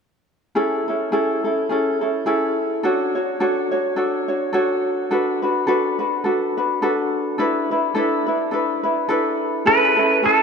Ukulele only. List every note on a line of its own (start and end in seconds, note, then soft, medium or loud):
0.55 0.88 C#4 medium
0.55 0.88 E4 medium
0.55 0.88 G#4 medium
0.55 0.87 A4 medium
0.88 1.11 C#4 soft
0.88 1.12 E4 soft
0.88 1.12 A4 soft
1.12 1.45 C#4 medium
1.12 1.45 E4 medium
1.12 1.45 G#4 medium
1.12 1.43 A4 medium
1.44 1.69 C#4 soft
1.44 1.70 E4 soft
1.44 1.70 A4 soft
1.69 2.02 C#4 medium
1.69 2.01 E4 medium
1.69 2.02 G#4 medium
1.69 2.00 A4 medium
2.01 2.25 C#4 soft
2.01 2.25 E4 soft
2.01 2.26 A4 soft
2.26 2.84 C#4 medium
2.26 2.84 E4 medium
2.26 2.83 G#4 medium
2.26 2.83 A4 medium
2.83 3.16 D4 medium
2.83 3.15 F#4 medium
2.83 3.16 A4 medium
2.83 3.14 C#5 medium
3.15 3.39 D4 soft
3.15 3.40 F#4 soft
3.15 3.40 C#5 soft
3.40 3.72 D4 medium
3.40 3.71 F#4 medium
3.40 3.73 A4 medium
3.40 3.70 C#5 medium
3.71 3.95 D4 soft
3.71 3.96 F#4 soft
3.71 3.97 C#5 soft
3.96 4.28 D4 medium
3.96 4.28 F#4 medium
3.96 4.29 A4 medium
3.96 4.27 C#5 medium
4.28 4.52 D4 soft
4.28 4.53 F#4 soft
4.28 4.53 C#5 soft
4.53 5.11 D4 medium
4.53 5.11 F#4 medium
4.53 5.10 A4 medium
4.53 5.11 C#5 medium
5.11 5.43 D4 medium
5.11 5.42 F#4 medium
5.11 5.43 A4 medium
5.11 5.41 B4 medium
5.42 5.66 D4 soft
5.42 5.67 F#4 soft
5.42 5.67 B4 soft
5.67 5.99 D4 medium
5.67 5.99 F#4 medium
5.67 6.00 A4 medium
5.67 5.98 B4 medium
5.99 6.24 D4 soft
5.99 6.24 F#4 soft
5.99 6.24 B4 medium
6.24 6.57 D4 medium
6.24 6.57 F#4 medium
6.24 6.57 A4 medium
6.24 6.56 B4 medium
6.57 6.81 D4 soft
6.57 6.82 F#4 soft
6.57 6.82 B4 medium
6.82 7.38 D4 medium
6.82 7.39 F#4 medium
6.82 7.38 A4 medium
6.82 7.39 B4 medium
7.38 7.71 D4 medium
7.38 7.71 E4 medium
7.38 7.70 A4 medium
7.38 7.70 B4 medium
7.71 7.94 D4 soft
7.71 7.95 E4 soft
7.71 7.95 B4 soft
7.95 8.28 D4 medium
7.95 8.27 E4 medium
7.95 8.27 A4 medium
7.95 8.25 B4 medium
8.26 8.51 D4 soft
8.26 8.52 E4 soft
8.26 8.52 B4 soft
8.51 8.84 D4 medium
8.51 8.83 E4 medium
8.51 8.84 A4 medium
8.51 8.82 B4 medium
8.83 9.08 D4 soft
8.83 9.09 E4 soft
8.83 9.09 B4 soft
9.09 9.66 D4 medium
9.09 9.67 E4 medium
9.09 9.65 A4 medium
9.09 9.67 B4 medium
9.66 9.98 C#4 medium
9.66 9.97 E4 medium
9.66 9.98 G#4 medium
9.66 9.96 A4 medium
9.97 10.22 C#4 soft
9.97 10.23 E4 soft
9.97 10.22 A4 soft
10.23 10.43 C#4 medium
10.23 10.43 E4 medium
10.23 10.43 G#4 medium
10.23 10.43 A4 medium